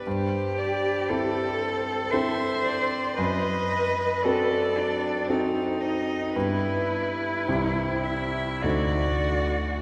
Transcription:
0.04 1.07 G2 medium
0.04 1.11 G4 medium
0.08 0.60 C5 medium
0.58 1.07 D5 medium
1.08 2.08 C4 soft
1.08 2.08 E4 soft
1.08 2.13 A4 medium
1.08 2.08 A4 soft
1.08 2.13 C5 medium
2.11 3.15 C4 soft
2.11 3.15 E4 soft
2.11 3.15 A4 soft
2.11 3.16 C5 medium
2.11 2.64 E5 medium
2.65 3.19 D5 medium
3.17 4.21 F#2 medium
3.17 4.25 B4 medium
3.17 4.24 D#5 medium
4.22 5.25 C4 soft
4.22 5.26 F#4 soft
4.22 4.79 A4 medium
4.22 5.26 A4 soft
4.22 5.29 D5 medium
4.78 5.33 D4 medium
5.27 6.31 C4 soft
5.27 6.31 F#4 soft
5.27 6.31 A4 soft
5.27 5.82 C5 medium
5.31 6.37 D#4 medium
5.81 6.32 D#5 medium
6.33 7.45 G2 medium
6.33 7.44 B3 soft
6.33 7.44 D4 soft
6.33 8.64 E4 medium
6.33 7.45 G4 soft
6.33 7.48 B4 medium
7.47 8.61 C2 medium
7.47 8.60 C4 soft
7.47 8.60 E4 soft
7.47 8.61 G4 soft
7.47 8.05 C5 medium
8.04 8.64 E5 medium
8.62 9.82 D2 medium
8.62 9.82 A3 soft
8.62 9.82 D#4 soft
8.62 9.82 F#4 medium
8.62 9.82 C5 soft
8.62 9.82 D5 medium

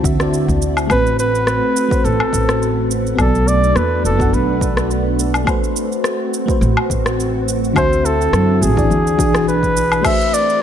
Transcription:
0.00 0.03 D3 medium
0.00 0.88 D3 medium
0.00 0.16 D3 medium
0.00 0.04 C4 medium
0.00 0.88 C4 medium
0.00 0.17 C4 medium
0.00 0.88 E4 medium
0.00 0.05 F#4 medium
0.00 3.15 F#4 medium
0.00 0.06 E5 medium
0.00 0.92 A5 medium
0.04 0.44 D2 medium
0.04 0.18 F#4 medium
0.04 0.18 E5 medium
0.04 kick loud
0.04 shaker medium
0.17 0.86 D3 medium
0.17 0.86 C4 medium
0.17 0.87 F#4 medium
0.17 cross-stick medium
0.17 shaker soft
0.22 0.88 D5 medium
0.34 shaker soft
0.49 0.86 D2 medium
0.49 kick medium
0.49 shaker soft
0.62 shaker medium
0.77 low woodblock medium
0.77 shaker soft
0.87 1.59 A1 medium
0.87 1.86 A3 medium
0.87 7.72 A3 medium
0.87 3.16 C4 medium
0.87 1.87 F#4 medium
0.87 1.88 B4 medium
0.87 kick loud
0.87 low woodblock medium
0.87 shaker soft
0.91 1.89 C4 medium
0.91 1.17 B4 loud
1.07 shaker soft
1.19 2.06 B4 loud
1.19 shaker medium
1.35 shaker soft
1.47 cross-stick medium
1.47 shaker soft
1.76 shaker medium
1.89 3.14 A3 medium
1.89 3.15 F#4 medium
1.89 3.16 B4 medium
1.89 kick loud
1.89 shaker soft
1.93 3.16 C5 medium
2.04 2.17 A1 medium
2.04 2.90 A4 medium
2.04 shaker soft
2.20 low woodblock medium
2.33 3.15 A1 medium
2.33 kick medium
2.33 shaker medium
2.49 cross-stick medium
2.49 shaker soft
2.63 shaker soft
2.91 shaker medium
3.07 shaker soft
3.16 3.72 B1 medium
3.16 4.15 B3 medium
3.16 5.45 B3 medium
3.16 5.45 D4 medium
3.16 4.15 F#4 medium
3.16 4.16 A4 medium
3.16 3.49 A4 loud
3.16 kick loud
3.16 low woodblock medium
3.16 shaker soft
3.21 4.17 D5 medium
3.35 shaker soft
3.48 3.78 D5 loud
3.48 shaker medium
3.64 shaker soft
3.76 4.06 E2 medium
3.76 4.04 B4 loud
3.76 cross-stick medium
3.76 shaker soft
4.04 4.29 F#1 medium
4.04 4.35 A4 medium
4.04 shaker medium
4.17 5.43 B3 medium
4.17 5.43 F#4 medium
4.17 5.44 A4 medium
4.17 kick loud
4.17 shaker soft
4.22 5.45 F#5 medium
4.33 5.44 B1 medium
4.33 4.90 B4 medium
4.33 shaker soft
4.61 kick loud
4.61 shaker medium
4.77 cross-stick medium
4.77 shaker soft
4.91 shaker soft
5.19 shaker medium
5.34 low woodblock medium
5.34 shaker soft
5.44 6.43 A3 medium
5.44 8.87 C4 medium
5.44 6.44 F#4 medium
5.44 10.00 F#4 medium
5.44 6.45 B4 medium
5.44 kick loud
5.44 low woodblock medium
5.44 shaker soft
5.49 6.46 C5 medium
5.64 shaker soft
5.76 shaker medium
5.92 shaker soft
6.04 cross-stick medium
6.04 shaker soft
6.34 shaker medium
6.46 7.71 A3 medium
6.46 7.72 F#4 medium
6.46 7.73 B4 medium
6.46 kick loud
6.46 shaker soft
6.51 7.74 C5 medium
6.61 6.74 A1 medium
6.61 shaker soft
6.77 low woodblock medium
6.90 7.72 A1 medium
6.90 kick medium
6.90 shaker medium
7.06 cross-stick medium
7.06 shaker soft
7.20 shaker soft
7.48 shaker medium
7.64 shaker soft
7.73 8.29 D2 medium
7.73 8.72 D3 medium
7.73 8.89 D3 medium
7.73 8.73 C4 medium
7.73 8.89 E4 medium
7.73 8.73 F#4 medium
7.73 kick loud
7.73 low woodblock medium
7.77 8.07 C5 loud
7.77 8.74 E5 medium
7.77 shaker soft
7.93 shaker soft
8.05 8.64 A4 loud
8.05 shaker medium
8.21 shaker soft
8.33 8.63 F#2 medium
8.33 cross-stick medium
8.33 shaker soft
8.62 8.86 A1 medium
8.62 9.48 G#4 medium
8.62 shaker medium
8.76 9.15 E3 medium
8.76 9.16 D4 medium
8.76 9.16 F#4 medium
8.76 9.16 D5 medium
8.76 kick loud
8.76 shaker soft
8.90 9.19 E2 medium
8.90 10.03 E3 medium
8.90 10.03 D4 medium
8.90 10.03 G#4 medium
8.90 shaker soft
9.07 shaker soft
9.18 10.01 B1 medium
9.18 9.31 E3 medium
9.18 9.32 D4 medium
9.18 9.32 F#4 medium
9.18 9.33 G#4 loud
9.18 kick loud
9.18 shaker medium
9.32 10.00 E3 medium
9.32 10.01 D4 medium
9.32 10.02 F#4 medium
9.32 cross-stick medium
9.32 shaker soft
9.37 10.02 G#4 medium
9.48 10.06 B4 loud
9.48 shaker soft
9.63 kick medium
9.63 shaker soft
9.77 shaker medium
9.92 low woodblock medium
9.92 shaker soft
10.02 10.62 A3 medium
10.02 10.62 C4 medium
10.02 10.62 F#4 medium
10.02 10.62 B4 medium
10.02 10.35 E5 loud
10.02 kick loud
10.02 crash loud
10.02 low woodblock medium
10.02 shaker soft
10.06 10.62 C5 medium
10.21 shaker soft
10.34 10.62 D5 loud
10.34 shaker medium
10.50 shaker soft

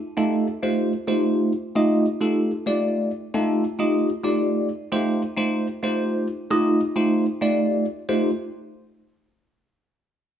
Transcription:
0.17 0.46 A3 medium
0.17 0.46 D#4 medium
0.17 0.46 F4 medium
0.17 0.47 G4 medium
0.17 0.47 A4 loud
0.63 0.92 A3 medium
0.63 0.92 D#4 medium
0.63 0.92 F4 medium
0.63 0.92 G4 medium
0.63 0.92 C5 medium
1.08 1.51 A3 medium
1.08 1.52 D#4 medium
1.08 1.52 F4 medium
1.08 1.52 G4 medium
1.08 1.52 C5 medium
1.75 2.05 A3 medium
1.75 2.05 D#4 medium
1.75 2.05 F4 medium
1.75 2.05 G4 medium
1.75 2.05 D#5 loud
2.20 2.50 A3 medium
2.20 2.50 D#4 medium
2.20 2.50 F4 medium
2.20 2.50 G4 medium
2.20 2.50 A4 medium
2.66 3.10 A3 medium
2.66 3.10 D#4 medium
2.66 3.10 F4 medium
2.66 3.10 G4 medium
2.66 3.10 D5 medium
3.34 3.63 A3 medium
3.34 3.63 D#4 medium
3.34 3.63 F4 medium
3.34 3.63 G4 medium
3.34 3.64 A4 loud
3.79 4.08 A3 medium
3.79 4.08 D#4 medium
3.79 4.08 F4 medium
3.79 4.09 G4 medium
3.79 4.09 D#5 medium
4.23 4.68 A3 medium
4.23 4.68 D#4 medium
4.23 4.68 F4 medium
4.23 4.68 G4 medium
4.23 4.68 D5 medium
4.92 5.21 A3 medium
4.92 5.21 D#4 medium
4.92 5.21 F4 medium
4.92 5.22 G4 medium
4.92 5.21 C5 loud
5.37 5.66 A3 medium
5.37 5.66 D#4 medium
5.37 5.67 F4 medium
5.37 5.66 G4 medium
5.37 5.67 C5 medium
5.83 6.26 A3 medium
5.83 6.26 D#4 medium
5.83 6.26 F4 medium
5.83 6.27 G4 medium
5.83 6.27 C5 medium
6.51 6.80 A3 medium
6.51 6.80 D#4 medium
6.51 6.80 F4 medium
6.51 6.80 G4 medium
6.51 6.80 D#5 loud
6.96 7.25 A3 medium
6.96 7.25 D#4 medium
6.96 7.25 F4 medium
6.96 7.25 G4 medium
6.96 7.25 C5 medium
7.41 7.84 A3 medium
7.41 7.84 D#4 medium
7.41 7.85 F4 medium
7.41 7.85 G4 medium
7.41 7.85 D5 medium
8.09 8.30 A3 medium
8.09 8.30 D#4 medium
8.09 8.30 F4 medium
8.09 8.30 G4 medium
8.09 8.30 C5 medium

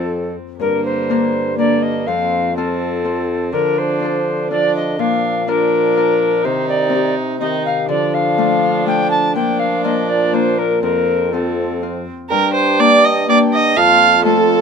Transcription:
0.00 0.33 F2 medium
0.00 0.63 F2 medium
0.00 0.34 F3 medium
0.00 0.40 C4 medium
0.00 0.62 C4 soft
0.00 0.36 A4 medium
0.00 0.63 A4 soft
0.60 2.08 G2 soft
0.60 2.09 G2 medium
0.60 1.55 D3 medium
0.60 1.54 A#3 medium
0.60 0.83 A#4 medium
0.85 1.57 C5 medium
1.10 1.57 A#3 soft
1.10 1.57 D4 soft
1.10 1.58 A#4 soft
1.58 2.10 D3 medium
1.58 2.09 A#3 soft
1.58 2.09 A#3 medium
1.58 2.09 D4 soft
1.58 2.09 A#4 soft
1.58 1.84 D5 medium
1.83 2.08 D#5 medium
2.07 3.53 F2 medium
2.07 3.56 F2 soft
2.07 2.56 F3 medium
2.07 2.55 C4 soft
2.07 2.56 F5 medium
2.56 3.52 F3 medium
2.56 3.54 C4 medium
2.56 3.03 C4 soft
2.56 3.04 F4 soft
2.56 3.52 A4 medium
2.56 3.04 A4 soft
3.05 3.55 C4 soft
3.05 4.01 F4 soft
3.05 4.01 A4 soft
3.52 5.00 D3 soft
3.52 5.01 D3 medium
3.52 4.49 F3 medium
3.52 4.50 D4 medium
3.52 3.80 A#4 medium
3.78 4.50 C5 medium
4.00 4.49 D4 soft
4.00 4.50 F4 soft
4.05 4.50 A4 soft
4.50 4.99 F3 medium
4.50 4.98 D4 medium
4.50 5.46 D4 soft
4.50 5.47 F4 soft
4.50 5.02 A4 soft
4.50 4.74 D5 medium
4.76 5.01 D#5 medium
4.99 6.46 A#2 medium
4.99 6.43 A#2 medium
4.99 5.47 F3 soft
4.99 5.46 D4 medium
4.99 5.50 F5 medium
5.47 6.47 F3 medium
5.47 5.95 D4 soft
5.47 6.45 D4 medium
5.47 5.95 F4 soft
5.47 5.96 A#4 soft
5.47 6.47 A#4 medium
5.96 6.46 D4 soft
5.96 6.46 F4 soft
5.96 6.47 A#4 soft
6.43 7.59 C3 medium
6.43 7.91 C3 soft
6.43 7.14 D#3 medium
6.43 7.40 D#4 medium
6.43 6.68 C5 medium
6.69 7.15 D5 medium
6.89 7.40 C4 soft
6.89 7.40 D#4 soft
6.95 7.41 G4 medium
7.41 7.91 D#3 medium
7.41 7.91 C4 soft
7.41 7.88 D#4 medium
7.41 7.91 D#4 soft
7.41 7.92 G4 soft
7.41 7.63 D#5 medium
7.66 7.89 F5 medium
7.88 9.36 D3 medium
7.88 9.31 D3 medium
7.88 9.35 F3 medium
7.88 9.32 D4 medium
7.88 8.16 D5 medium
8.14 8.87 F5 medium
8.38 8.85 A3 soft
8.38 8.85 D4 medium
8.38 8.86 F4 medium
8.86 9.37 A3 soft
8.86 9.83 D4 soft
8.86 9.83 F4 soft
8.86 9.10 G5 loud
9.11 9.34 A5 medium
9.35 10.85 A#2 medium
9.35 10.80 F3 medium
9.35 10.79 D4 medium
9.35 9.61 G5 loud
9.59 9.84 F5 medium
9.84 10.32 A#3 soft
9.84 10.33 D4 soft
9.84 10.33 F4 medium
9.84 10.10 D#5 medium
10.09 10.35 D5 medium
10.34 10.85 A#3 soft
10.34 10.85 D4 soft
10.34 11.32 F4 soft
10.34 10.60 C5 medium
10.59 10.82 A#4 medium
10.82 12.33 F2 soft
10.82 12.07 F2 medium
10.82 11.31 F3 medium
10.82 11.31 C4 medium
10.82 11.34 A#4 medium
11.32 12.05 F3 medium
11.32 12.09 C4 medium
11.32 11.81 C4 soft
11.32 11.82 F4 soft
11.32 11.82 A4 medium
11.82 12.33 C4 soft
11.82 12.33 F4 soft
12.29 13.79 G2 medium
12.29 13.73 G2 medium
12.29 13.25 D4 medium
12.29 12.53 A#4 loud
12.29 13.24 G5 medium
12.54 12.81 C5 medium
12.80 13.28 A#3 medium
12.80 13.28 D4 medium
12.80 13.06 D5 loud
13.04 13.28 D#5 medium
13.29 13.79 A#3 soft
13.29 13.79 D4 soft
13.29 13.78 D4 medium
13.29 13.37 D5 loud
13.29 13.79 G5 medium
13.53 13.78 D#5 medium
13.76 14.61 F2 medium
13.76 14.24 F4 medium
13.76 14.24 F5 loud
13.76 14.24 A5 medium
14.24 14.61 A3 medium
14.24 14.61 C4 medium
14.24 14.61 F4 medium
14.24 14.61 A4 loud
14.24 14.61 A5 medium

